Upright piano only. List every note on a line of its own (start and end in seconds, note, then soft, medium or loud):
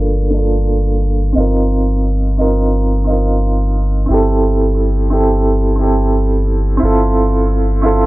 0.00 0.30 A#3 medium
0.00 0.33 D4 medium
0.00 0.36 F4 medium
0.00 0.38 A4 medium
0.30 1.31 A#3 medium
0.30 1.33 D4 medium
0.36 1.34 F4 medium
0.36 1.35 A4 medium
1.33 2.33 C4 medium
1.33 2.35 D#4 medium
1.37 2.36 F4 medium
1.37 2.37 A#4 medium
2.38 3.03 C4 medium
2.38 3.03 D#4 medium
2.38 3.04 F4 medium
2.38 3.05 A#4 medium
3.04 4.04 C4 medium
3.04 4.06 D#4 medium
3.09 4.07 F4 medium
3.09 4.08 A#4 medium
4.06 5.06 C4 medium
4.06 5.07 E4 medium
4.11 5.09 G4 medium
4.11 5.10 A4 loud
5.10 5.74 C4 medium
5.10 5.76 E4 medium
5.10 5.77 G4 medium
5.10 5.77 A4 medium
5.76 6.76 C4 medium
5.76 6.78 E4 medium
5.81 6.79 G4 medium
5.81 6.80 A4 medium
6.77 7.78 C4 medium
6.77 7.80 E4 medium
6.83 7.81 F4 medium
6.83 7.82 A4 medium
7.82 8.06 C4 medium
7.82 8.06 E4 medium
7.82 8.06 F4 medium
7.86 8.06 A4 medium